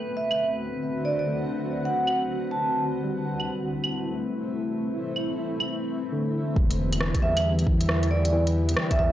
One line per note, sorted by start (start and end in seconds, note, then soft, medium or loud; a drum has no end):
0.00 3.00 D3 medium
0.00 0.72 A3 medium
0.00 3.00 C4 medium
0.00 3.00 F#4 medium
0.00 6.58 B4 medium
0.17 0.26 E5 medium
0.31 0.36 E5 medium
0.31 claves medium
1.05 1.14 D5 medium
1.19 1.24 D5 medium
1.27 2.49 A3 soft
1.85 2.15 F#5 medium
2.07 claves medium
2.51 2.81 A5 medium
3.03 4.25 G3 soft
3.03 6.53 A3 medium
3.03 6.53 C4 medium
3.03 6.53 E4 medium
3.40 claves soft
3.84 claves medium
5.16 claves soft
5.60 claves medium
6.12 6.74 D3 medium
6.56 7.13 E1 loud
6.56 9.12 B3 medium
6.56 8.31 E4 medium
6.56 9.12 G4 medium
6.56 kick loud
6.71 closed hi-hat soft
6.93 closed hi-hat medium
6.93 claves soft
7.00 8.22 E3 medium
7.00 cross-stick loud
7.15 kick loud
7.15 closed hi-hat soft
7.19 8.76 E2 medium
7.19 8.34 G3 medium
7.19 7.32 E5 medium
7.37 7.42 E5 medium
7.37 closed hi-hat medium
7.37 claves medium
7.59 closed hi-hat soft
7.67 kick loud
7.81 closed hi-hat medium
7.89 cross-stick loud
8.03 closed hi-hat soft
8.11 8.20 D5 medium
8.25 8.30 D5 medium
8.25 closed hi-hat medium
8.33 9.12 E3 medium
8.33 9.12 D4 medium
8.47 closed hi-hat soft
8.69 closed hi-hat medium
8.77 cross-stick loud
8.91 8.98 E5 medium
8.91 kick loud
8.91 closed hi-hat soft
8.99 9.12 E2 medium
8.99 9.08 E5 medium
8.99 kick medium